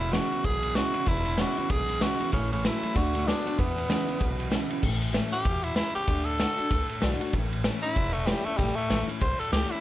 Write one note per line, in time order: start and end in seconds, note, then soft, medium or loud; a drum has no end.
0.00 0.17 E1 medium
0.00 0.11 E2 medium
0.00 0.42 E2 medium
0.00 0.12 B2 medium
0.00 0.14 E4 loud
0.00 ride medium
0.12 0.29 E2 medium
0.12 0.29 C#3 loud
0.12 0.31 E3 medium
0.12 0.31 G#3 medium
0.12 0.32 B3 loud
0.12 0.30 E4 medium
0.12 0.47 F#4 loud
0.12 snare loud
0.12 ride medium
0.31 0.43 E2 medium
0.31 0.43 C#3 medium
0.31 0.45 B3 soft
0.31 0.44 E4 medium
0.31 muted upright bass stroke medium
0.31 ride medium
0.44 0.80 B1 medium
0.44 0.61 E2 medium
0.44 0.61 B2 medium
0.44 1.05 B2 loud
0.44 0.77 G#4 loud
0.44 kick loud
0.44 ride medium
0.63 0.74 E2 medium
0.63 0.75 B2 medium
0.63 ride medium
0.75 0.93 E2 medium
0.75 0.93 C#3 loud
0.75 0.94 E3 medium
0.75 0.94 G#3 medium
0.75 0.95 B3 medium
0.75 0.94 E4 loud
0.75 1.09 F#4 loud
0.75 snare loud
0.75 ride medium
0.94 1.05 E2 medium
0.94 1.06 C#3 medium
0.94 1.08 B3 soft
0.94 1.07 E4 medium
0.94 muted upright bass stroke medium
0.94 ride medium
1.06 1.42 E1 medium
1.06 1.23 E2 medium
1.06 1.68 E2 loud
1.06 1.24 B2 medium
1.06 1.41 E4 loud
1.06 kick loud
1.06 ride medium
1.25 1.37 E2 medium
1.25 1.37 B2 medium
1.25 ride medium
1.38 1.55 E2 medium
1.38 1.55 C#3 loud
1.38 1.56 E3 loud
1.38 1.57 G#3 loud
1.38 1.57 B3 medium
1.38 1.56 E4 loud
1.38 1.73 F#4 medium
1.38 snare loud
1.38 ride medium
1.57 1.69 E2 medium
1.57 1.69 C#3 medium
1.57 1.71 B3 soft
1.57 1.69 E4 medium
1.57 muted upright bass stroke medium
1.57 ride medium
1.70 2.05 B1 medium
1.70 1.87 E2 medium
1.70 1.87 B2 loud
1.70 2.30 B2 loud
1.70 2.04 G#4 loud
1.70 kick loud
1.70 ride medium
1.88 1.99 E2 medium
1.88 2.00 B2 medium
1.88 ride medium
2.00 2.18 E2 medium
2.00 2.18 C#3 medium
2.00 2.19 E3 medium
2.00 2.19 G#3 medium
2.00 2.19 B3 medium
2.00 2.18 E4 medium
2.00 2.33 F#4 loud
2.00 snare loud
2.00 ride loud
2.19 2.32 E2 medium
2.19 2.32 C#3 medium
2.19 2.33 B3 soft
2.19 2.32 E4 medium
2.19 muted upright bass stroke medium
2.19 ride medium
2.32 2.68 A1 medium
2.32 2.92 A2 loud
2.32 2.49 A2 medium
2.32 2.49 E3 loud
2.32 2.50 C#4 medium
2.32 kick loud
2.32 ride medium
2.52 2.63 A2 medium
2.52 2.63 E3 medium
2.52 2.67 C#4 medium
2.52 ride medium
2.64 2.81 A2 medium
2.64 2.94 E3 medium
2.64 2.81 F#3 loud
2.64 2.94 A3 medium
2.64 2.95 C#4 loud
2.64 2.98 E4 medium
2.64 2.95 E4 loud
2.64 snare loud
2.64 ride medium
2.83 2.95 A2 medium
2.83 2.95 F#3 medium
2.83 muted upright bass stroke medium
2.83 ride medium
2.95 3.31 D2 medium
2.95 3.12 D3 medium
2.95 3.25 D3 loud
2.95 3.12 A3 loud
2.95 3.29 F#4 loud
2.95 kick loud
2.95 ride medium
3.15 3.26 D3 medium
3.15 3.26 A3 medium
3.15 ride medium
3.27 3.45 D3 medium
3.27 3.44 D3 medium
3.27 3.45 A3 medium
3.27 3.44 B3 medium
3.27 3.60 D4 loud
3.27 3.46 D4 medium
3.27 3.44 F#4 medium
3.27 snare loud
3.27 ride medium
3.45 3.57 D3 medium
3.45 3.57 B3 medium
3.45 3.58 D4 soft
3.45 3.57 F#4 medium
3.45 muted upright bass stroke medium
3.45 ride medium
3.58 4.18 E2 medium
3.58 3.75 E2 medium
3.58 3.94 E2 medium
3.58 3.75 B2 medium
3.58 4.52 B3 medium
3.58 kick loud
3.58 ride medium
3.76 3.87 E2 medium
3.76 3.88 B2 medium
3.76 ride medium
3.89 4.06 E2 medium
3.89 4.06 C#3 loud
3.89 4.07 E3 medium
3.89 4.08 G#3 medium
3.89 4.08 B3 loud
3.89 4.06 E4 medium
3.89 snare loud
3.89 ride medium
4.07 4.18 E2 medium
4.07 4.19 C#3 medium
4.07 4.21 B3 soft
4.07 4.20 E4 medium
4.07 muted upright bass stroke medium
4.07 ride medium
4.19 4.56 B1 medium
4.19 4.36 E2 medium
4.19 4.37 B2 medium
4.19 4.80 B2 loud
4.19 kick loud
4.19 ride medium
4.38 4.49 E2 medium
4.38 4.50 B2 medium
4.38 ride medium
4.50 4.68 E2 medium
4.50 4.68 C#3 medium
4.50 4.69 E3 medium
4.50 4.69 G#3 medium
4.50 4.70 B3 medium
4.50 4.68 E4 medium
4.50 snare loud
4.50 ride medium
4.70 4.81 E2 medium
4.70 4.82 C#3 medium
4.70 4.83 B3 soft
4.70 4.82 E4 medium
4.70 ride medium
4.83 5.18 A1 medium
4.83 5.43 A2 medium
4.83 kick loud
4.83 crash loud
5.02 ride medium
5.13 5.31 E3 medium
5.13 5.32 A3 loud
5.13 5.32 C#4 loud
5.13 5.31 E4 loud
5.13 snare loud
5.13 ride medium
5.32 5.46 C#4 soft
5.32 5.45 E4 medium
5.32 5.65 G4 loud
5.32 muted upright bass stroke medium
5.32 ride medium
5.44 5.80 E2 medium
5.44 5.75 B2 loud
5.44 kick loud
5.44 ride medium
5.64 5.76 E4 medium
5.64 ride medium
5.76 6.07 C#3 medium
5.76 5.94 E4 loud
5.76 snare loud
5.76 ride medium
5.95 6.27 G4 loud
5.95 muted upright bass stroke medium
5.95 ride medium
6.08 6.43 D2 medium
6.08 6.38 D3 medium
6.08 kick loud
6.08 ride medium
6.25 7.17 A4 loud
6.25 ride medium
6.39 6.57 D3 medium
6.39 6.57 A3 medium
6.39 6.58 D4 loud
6.39 6.56 F#4 loud
6.39 snare loud
6.39 ride medium
6.57 6.71 D4 medium
6.57 6.70 F#4 medium
6.57 muted upright bass stroke medium
6.57 ride medium
6.71 6.87 C#2 medium
6.71 7.31 A2 loud
6.71 kick loud
6.71 ride loud
6.89 ride medium
7.00 7.18 B1 medium
7.00 7.19 D3 medium
7.00 7.20 A3 medium
7.00 7.20 D4 medium
7.00 7.19 F#4 medium
7.00 snare loud
7.00 ride medium
7.20 7.34 D4 soft
7.20 7.32 F#4 medium
7.20 muted upright bass stroke medium
7.20 ride medium
7.33 7.68 A1 medium
7.33 7.93 A2 loud
7.33 kick loud
7.33 ride medium
7.53 ride medium
7.64 7.82 E3 medium
7.64 7.83 A3 loud
7.64 7.83 C#4 loud
7.64 7.82 E4 loud
7.64 snare loud
7.64 ride medium
7.82 7.96 C#4 medium
7.82 8.15 E4 loud
7.82 7.95 E4 medium
7.82 muted upright bass stroke medium
7.82 ride medium
7.96 8.31 E1 medium
7.96 8.56 E2 loud
7.96 kick loud
7.96 ride medium
8.13 8.28 A3 medium
8.13 ride medium
8.25 8.44 E3 medium
8.25 8.47 G3 loud
8.25 8.45 A3 medium
8.25 8.45 C#4 medium
8.25 8.44 E4 medium
8.25 snare loud
8.25 ride medium
8.45 8.59 A3 loud
8.45 8.59 C#4 medium
8.45 8.58 E4 medium
8.45 muted upright bass stroke medium
8.45 ride medium
8.57 8.72 A1 loud
8.57 9.19 A2 loud
8.57 8.77 G3 loud
8.57 kick loud
8.57 ride medium
8.76 9.07 A3 loud
8.76 muted upright bass stroke medium
8.76 ride medium
8.90 9.06 A1 medium
8.90 9.08 E3 medium
8.90 9.08 A3 medium
8.90 9.08 C#4 loud
8.90 9.06 E4 loud
8.90 snare loud
8.90 ride medium
9.07 9.21 C#4 soft
9.07 9.20 E4 medium
9.07 ride medium
9.21 9.37 B1 medium
9.21 9.80 E2 loud
9.21 9.41 C5 loud
9.21 kick loud
9.21 ride medium
9.39 9.52 A4 medium
9.39 muted upright bass stroke medium
9.39 ride medium
9.52 9.68 C#2 medium
9.52 9.70 E3 medium
9.52 9.71 A3 medium
9.52 9.71 C#4 medium
9.52 9.69 E4 medium
9.52 9.73 G4 loud
9.52 snare loud
9.52 ride medium
9.70 9.80 C#4 soft
9.70 9.80 E4 medium
9.70 ride medium